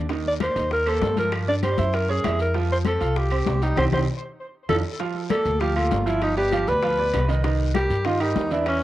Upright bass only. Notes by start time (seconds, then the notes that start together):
Already playing: D#2
0.56 D#2
1.01 G2
1.78 F#2
2.24 F2
3.01 C2
3.46 C2
3.77 C2
3.93 C2
4.69 F2
5.45 D2
5.91 G1
6.68 D2
7.14 C2
7.90 G2
8.36 E2